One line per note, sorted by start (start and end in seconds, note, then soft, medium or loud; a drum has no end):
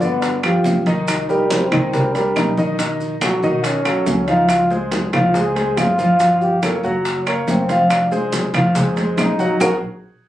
0.00 0.61 G1 medium
0.00 0.36 D3 medium
0.00 0.41 B3 medium
0.00 0.36 D4 medium
0.00 0.36 D5 medium
0.00 high bongo soft
0.00 high conga soft
0.00 maracas soft
0.22 high bongo medium
0.22 high conga soft
0.22 high timbale medium
0.22 maracas medium
0.43 0.79 F3 medium
0.43 0.79 F4 medium
0.43 0.79 G4 medium
0.43 high bongo soft
0.43 high conga soft
0.43 high timbale medium
0.43 claves medium
0.43 maracas soft
0.64 1.66 C2 medium
0.64 high bongo soft
0.64 low bongo medium
0.64 high conga medium
0.64 low timbale medium
0.64 maracas medium
0.86 1.21 D#3 medium
0.86 1.22 D#4 medium
0.86 1.22 D#5 medium
0.86 high conga medium
0.86 high timbale medium
0.86 maracas soft
1.08 1.53 D#4 medium
1.08 high bongo medium
1.08 high conga soft
1.08 high timbale medium
1.08 claves medium
1.08 maracas medium
1.29 1.64 G3 medium
1.29 1.64 G4 medium
1.29 1.65 A#4 medium
1.29 high bongo soft
1.29 high conga soft
1.29 maracas soft
1.51 2.16 C4 medium
1.51 high bongo medium
1.51 high conga medium
1.51 high timbale medium
1.51 low timbale medium
1.51 maracas medium
1.72 2.32 C2 medium
1.72 1.90 D#3 medium
1.72 1.90 D#4 medium
1.72 1.90 D#5 medium
1.72 high bongo soft
1.72 low conga medium
1.72 high timbale medium
1.72 claves medium
1.72 maracas soft
1.93 2.11 G3 medium
1.93 2.11 G4 medium
1.93 2.11 A#4 medium
1.93 high bongo medium
1.93 high conga soft
1.93 low conga medium
1.93 maracas medium
2.15 2.50 G3 medium
2.15 2.38 D4 loud
2.15 2.50 G4 medium
2.15 2.50 A#4 medium
2.15 high bongo soft
2.15 high conga soft
2.15 high timbale medium
2.15 maracas soft
2.36 3.37 B1 medium
2.36 2.57 D#4 medium
2.36 high bongo soft
2.36 low bongo medium
2.36 high conga medium
2.36 high timbale medium
2.36 low timbale medium
2.36 claves medium
2.36 maracas medium
2.57 2.75 D#3 medium
2.57 2.75 D#4 medium
2.57 2.75 D#5 medium
2.57 high conga medium
2.57 maracas soft
2.79 3.14 D#3 medium
2.79 3.14 D#4 medium
2.79 3.14 D#5 medium
2.79 high bongo medium
2.79 high conga soft
2.79 high timbale medium
2.79 maracas medium
3.00 high bongo soft
3.00 high conga soft
3.00 maracas soft
3.21 3.39 F#3 medium
3.21 3.39 F#4 medium
3.21 3.66 F#4 medium
3.21 3.39 A4 medium
3.21 high bongo medium
3.21 high conga medium
3.21 high timbale medium
3.21 low timbale medium
3.21 claves medium
3.21 maracas medium
3.43 4.03 B2 medium
3.43 3.78 D#3 medium
3.43 3.78 D#4 medium
3.43 3.78 D#5 medium
3.43 high bongo soft
3.43 high conga soft
3.43 maracas soft
3.64 4.30 C#4 medium
3.64 high bongo medium
3.64 high conga soft
3.64 high timbale medium
3.64 maracas medium
3.85 4.20 F#3 medium
3.85 4.21 F#4 medium
3.85 4.21 A4 medium
3.85 high bongo soft
3.85 high conga soft
3.85 high timbale medium
3.85 claves medium
3.85 maracas soft
4.06 5.07 C#2 medium
4.06 high bongo soft
4.06 low bongo medium
4.06 high conga medium
4.06 low timbale medium
4.06 maracas medium
4.28 4.63 F3 medium
4.28 4.51 D#4 medium
4.28 4.63 F4 medium
4.28 4.63 F5 medium
4.28 high conga medium
4.28 high timbale medium
4.28 maracas soft
4.49 4.71 F4 medium
4.49 high bongo medium
4.49 high conga soft
4.49 high timbale medium
4.49 claves medium
4.49 maracas medium
4.70 5.06 G#3 medium
4.70 5.06 G#4 medium
4.70 5.06 C5 medium
4.70 high bongo soft
4.70 high conga soft
4.70 maracas soft
4.92 high bongo medium
4.92 high conga medium
4.92 high timbale medium
4.92 low timbale medium
4.92 maracas medium
5.13 5.73 C#2 medium
5.13 5.31 F3 medium
5.13 5.31 F4 medium
5.13 5.31 F5 medium
5.13 high bongo soft
5.13 low conga medium
5.13 high timbale medium
5.13 claves medium
5.13 maracas soft
5.34 5.52 G#3 medium
5.34 5.52 G#4 medium
5.34 5.79 G#4 medium
5.34 5.52 C5 medium
5.34 high bongo medium
5.34 high conga soft
5.34 maracas medium
5.56 5.91 G#3 medium
5.56 5.91 G#4 medium
5.56 5.91 C5 medium
5.56 high bongo soft
5.56 high conga soft
5.56 high timbale medium
5.56 maracas soft
5.77 6.78 G1 medium
5.77 6.43 F4 loud
5.77 high bongo soft
5.77 low bongo medium
5.77 high conga medium
5.77 high timbale medium
5.77 low timbale medium
5.77 claves medium
5.77 maracas medium
5.99 6.16 F3 medium
5.99 6.16 F4 medium
5.99 6.16 F5 medium
5.99 high conga medium
5.99 maracas soft
6.20 6.55 F3 medium
6.20 6.55 F4 medium
6.20 6.55 F5 medium
6.20 high bongo medium
6.20 high conga soft
6.20 high timbale medium
6.20 maracas medium
6.41 6.62 G4 medium
6.41 high bongo soft
6.41 high conga soft
6.41 maracas soft
6.63 6.80 A#3 medium
6.63 6.75 A4 medium
6.63 6.80 A#4 medium
6.63 6.80 C#5 medium
6.63 high bongo medium
6.63 high conga medium
6.63 high timbale medium
6.63 low timbale medium
6.63 claves medium
6.63 maracas medium
6.83 7.44 F#1 medium
6.83 7.19 F#3 medium
6.83 7.19 F#4 medium
6.83 7.19 F#5 medium
6.83 high bongo soft
6.83 high conga soft
6.83 maracas soft
7.05 high bongo medium
7.05 high conga soft
7.05 high timbale medium
7.05 maracas medium
7.27 7.62 A#3 medium
7.27 7.62 A#4 medium
7.27 7.62 C#5 medium
7.27 high bongo soft
7.27 high conga soft
7.27 high timbale medium
7.27 claves medium
7.27 maracas soft
7.48 8.48 F1 medium
7.48 7.93 C4 medium
7.48 high bongo soft
7.48 low bongo medium
7.48 high conga medium
7.48 low timbale medium
7.48 maracas medium
7.69 8.04 F3 medium
7.69 8.04 F4 medium
7.69 8.04 F5 medium
7.69 high conga medium
7.69 high timbale medium
7.69 maracas soft
7.90 8.12 D4 medium
7.90 high bongo medium
7.90 high conga soft
7.90 high timbale loud
7.90 claves medium
7.90 maracas medium
8.11 8.47 G#3 medium
8.11 8.47 G#4 medium
8.11 8.47 C5 medium
8.11 high bongo soft
8.11 high conga soft
8.11 maracas soft
8.32 high bongo medium
8.32 high conga medium
8.32 high timbale medium
8.32 low timbale medium
8.32 maracas medium
8.54 9.14 F2 medium
8.54 8.72 F3 medium
8.54 8.72 F4 medium
8.54 8.72 F5 medium
8.54 high bongo soft
8.54 low conga medium
8.54 high timbale medium
8.54 claves medium
8.54 maracas soft
8.75 8.93 G#3 medium
8.75 8.93 G#4 medium
8.75 8.94 C5 medium
8.75 high bongo medium
8.75 high conga soft
8.75 low conga medium
8.75 maracas medium
8.96 9.32 G#3 medium
8.96 9.32 G#4 medium
8.96 9.32 C5 medium
8.96 high bongo soft
8.96 high conga soft
8.96 high timbale medium
8.96 maracas soft
9.17 9.58 A#1 medium
9.17 9.58 D#4 medium
9.17 high bongo soft
9.17 low bongo medium
9.17 high conga medium
9.17 high timbale medium
9.17 low timbale medium
9.17 claves medium
9.17 maracas medium
9.39 9.57 F#3 medium
9.39 9.57 F#4 medium
9.39 9.57 F#5 medium
9.39 high conga medium
9.39 maracas soft
9.60 9.76 A#1 loud
9.60 9.74 F#4 medium
9.60 9.71 F#4 medium
9.60 9.74 G#4 medium
9.60 9.74 A#4 loud
9.60 low bongo medium
9.60 high conga loud
9.60 high timbale loud
9.60 claves loud
9.60 maracas loud